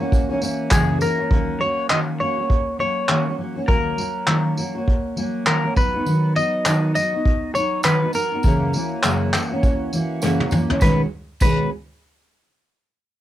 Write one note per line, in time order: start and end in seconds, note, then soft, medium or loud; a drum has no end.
0.00 0.31 E3 soft
0.00 0.30 A#3 medium
0.00 0.29 C#4 medium
0.00 0.28 F#4 medium
0.00 0.67 A#4 medium
0.12 kick loud
0.12 tambourine soft
0.29 0.39 E3 medium
0.29 0.40 A#3 medium
0.29 0.41 C#4 medium
0.29 0.41 F#4 medium
0.40 0.71 E3 medium
0.40 0.71 A#3 medium
0.40 0.71 C#4 medium
0.40 tambourine medium
0.43 0.72 F#4 medium
0.43 tambourine soft
0.71 1.01 F#2 medium
0.71 1.01 C#3 medium
0.71 0.99 E3 medium
0.71 1.00 A#3 medium
0.71 1.01 C#4 medium
0.71 1.02 F#4 medium
0.71 1.01 G#4 medium
0.71 kick loud
0.71 clap loud
0.71 tambourine medium
1.00 1.19 E3 medium
1.00 1.19 A#3 medium
1.00 1.18 C#4 medium
1.00 1.17 F#4 medium
1.00 1.63 A#4 medium
1.00 tambourine medium
1.00 tambourine soft
1.18 1.30 E3 medium
1.18 1.30 A#3 medium
1.18 1.31 C#4 medium
1.18 1.30 F#4 medium
1.30 1.60 D#3 medium
1.30 1.59 F#3 medium
1.30 1.60 A#3 medium
1.30 1.61 C#4 medium
1.30 1.61 F#4 medium
1.30 kick loud
1.60 1.89 F#3 medium
1.60 1.90 A#3 medium
1.60 1.90 C#4 medium
1.60 1.91 F#4 medium
1.60 1.90 C#5 medium
1.90 2.20 D#3 medium
1.90 2.19 F#3 medium
1.90 2.20 A#3 medium
1.90 2.21 C#4 medium
1.90 2.21 F#4 medium
1.90 1.98 D#5 loud
1.90 clap loud
2.20 2.38 F#3 soft
2.20 2.38 A#3 medium
2.20 2.37 C#4 medium
2.20 2.36 F#4 medium
2.20 2.79 C#5 medium
2.37 2.79 A#3 soft
2.37 2.79 C#4 soft
2.37 2.79 F#4 medium
2.50 kick medium
2.79 3.08 F#3 medium
2.79 3.08 A#3 medium
2.79 3.09 C#4 medium
2.79 3.09 F#4 medium
2.79 3.35 C#5 medium
3.08 3.27 D#3 medium
3.08 3.27 F#3 medium
3.08 3.27 A#3 medium
3.08 3.27 C#4 medium
3.08 3.25 F#4 medium
3.08 clap loud
3.26 3.38 A#3 soft
3.26 3.39 C#4 soft
3.26 3.38 F#4 medium
3.38 3.56 F#3 medium
3.38 3.57 A#3 soft
3.38 3.56 C#4 medium
3.38 3.54 F#4 medium
3.55 3.67 A#3 soft
3.55 3.68 C#4 medium
3.55 3.68 F#4 soft
3.67 3.98 D#3 medium
3.67 3.96 F#3 medium
3.67 3.97 A#3 medium
3.67 3.98 C#4 medium
3.67 3.99 F#4 medium
3.67 5.46 A#4 medium
3.67 kick loud
3.97 4.26 F#3 medium
3.97 4.27 A#3 medium
3.97 4.27 C#4 medium
3.97 4.28 F#4 medium
3.97 tambourine medium
4.27 4.57 D#3 medium
4.27 4.55 F#3 medium
4.27 4.57 A#3 medium
4.27 4.57 C#4 medium
4.27 4.58 F#4 medium
4.27 clap loud
4.57 4.75 F#3 medium
4.57 4.76 A#3 medium
4.57 4.75 C#4 medium
4.57 4.74 F#4 medium
4.57 tambourine medium
4.75 5.16 A#3 soft
4.75 5.17 C#4 soft
4.75 5.17 F#4 medium
4.88 kick medium
5.16 5.45 F#3 medium
5.16 5.46 A#3 medium
5.16 5.47 C#4 medium
5.16 5.47 F#4 medium
5.16 tambourine medium
5.46 5.64 D#3 medium
5.46 5.65 F#3 medium
5.46 5.65 A#3 medium
5.46 5.64 C#4 medium
5.46 5.63 F#4 medium
5.46 5.75 A#4 medium
5.46 clap loud
5.64 5.76 A#3 soft
5.64 5.77 C#4 medium
5.64 5.76 F#4 medium
5.76 5.94 F#3 medium
5.76 5.95 B3 medium
5.76 5.94 D#4 medium
5.76 5.92 F#4 medium
5.76 6.36 B4 medium
5.76 kick medium
5.76 tambourine medium
5.94 6.05 B3 soft
5.94 6.06 D#4 soft
5.94 6.06 F#4 medium
6.05 6.36 D#3 medium
6.05 6.34 F#3 medium
6.05 6.35 B3 medium
6.05 6.36 D#4 medium
6.05 6.37 F#4 medium
6.05 tambourine soft
6.35 6.65 F#3 medium
6.35 6.65 B3 medium
6.35 6.66 D#4 medium
6.35 6.66 F#4 medium
6.35 6.94 D#5 loud
6.35 tambourine medium
6.65 6.95 D#3 medium
6.65 6.94 F#3 medium
6.65 6.95 B3 medium
6.65 6.96 D#4 medium
6.65 6.96 F#4 medium
6.65 clap loud
6.65 tambourine medium
6.95 7.13 F#3 medium
6.95 7.14 B3 medium
6.95 7.11 F#4 medium
6.95 7.54 D#5 medium
6.95 tambourine medium
7.12 7.55 B3 soft
7.12 7.55 D#4 soft
7.12 7.55 F#4 soft
7.25 kick medium
7.54 7.84 F#3 medium
7.54 7.84 B3 medium
7.54 7.85 D#4 medium
7.54 7.85 F#4 medium
7.54 7.84 C#5 medium
7.54 tambourine medium
7.54 tambourine soft
7.83 8.02 D#3 medium
7.83 8.03 F#3 medium
7.83 8.03 B3 medium
7.83 8.02 D#4 medium
7.83 8.01 F#4 medium
7.83 8.15 B4 medium
7.83 clap loud
7.83 tambourine medium
8.02 8.14 B3 soft
8.02 8.15 D#4 soft
8.02 8.14 F#4 medium
8.13 8.32 F#3 medium
8.13 tambourine soft
8.15 8.33 B3 medium
8.15 8.33 D#4 medium
8.15 8.31 F#4 medium
8.15 10.19 A#4 medium
8.15 tambourine medium
8.32 8.45 B3 soft
8.32 8.45 D#4 soft
8.32 8.44 F#4 soft
8.43 8.74 F#2 medium
8.43 8.74 C#3 medium
8.43 8.73 E3 medium
8.43 8.74 A#3 medium
8.43 8.75 C#4 medium
8.43 8.75 F#4 medium
8.43 kick loud
8.43 tambourine soft
8.73 9.03 E3 medium
8.73 9.03 A#3 medium
8.73 9.04 C#4 medium
8.73 tambourine soft
8.73 tambourine medium
8.77 9.04 F#4 medium
9.03 9.33 F#2 medium
9.03 9.33 C#3 medium
9.03 9.32 E3 medium
9.03 9.33 A#3 medium
9.03 9.34 C#4 medium
9.03 9.34 F#4 medium
9.03 clap loud
9.03 tambourine medium
9.33 9.51 E3 medium
9.33 9.52 A#3 medium
9.33 9.51 C#4 medium
9.33 9.50 F#4 medium
9.33 clap medium
9.33 tambourine medium
9.51 9.91 E3 medium
9.51 9.93 A#3 soft
9.51 9.93 C#4 medium
9.51 9.93 F#4 medium
9.63 kick loud
9.63 tambourine soft
9.93 10.22 E3 medium
9.93 10.22 A#3 medium
9.93 10.23 C#4 medium
9.93 10.23 F#4 medium
9.93 tambourine medium
9.93 tambourine soft
10.22 10.40 F#2 medium
10.22 10.40 C#3 medium
10.22 10.41 E3 medium
10.22 10.41 A#3 medium
10.22 10.40 C#4 medium
10.22 10.39 F#4 medium
10.22 snare medium
10.22 tambourine medium
10.40 10.51 E3 medium
10.40 10.52 A#3 medium
10.40 10.53 C#4 medium
10.40 10.52 F#4 medium
10.40 high tom medium
10.51 10.70 E3 medium
10.51 10.70 A#3 medium
10.51 10.69 C#4 medium
10.51 mid tom medium
10.51 tambourine medium
10.55 10.68 F#4 medium
10.69 10.82 E3 soft
10.69 10.82 A#3 soft
10.69 10.82 C#4 medium
10.69 10.82 F#4 medium
10.69 floor tom medium
10.81 11.02 B2 medium
10.81 11.02 D#3 medium
10.81 11.02 G#3 medium
10.81 11.03 B3 medium
10.81 11.03 C#4 medium
10.81 11.03 F#4 medium
10.81 11.01 B4 medium
10.81 kick loud
10.81 snare medium
10.81 tambourine medium
11.40 11.66 B2 medium
11.40 11.66 D#3 medium
11.40 11.67 G#3 medium
11.40 11.67 B3 medium
11.40 11.67 C#4 medium
11.40 11.67 F#4 medium
11.40 11.69 B4 medium
11.40 kick loud
11.40 crash medium
11.40 tambourine medium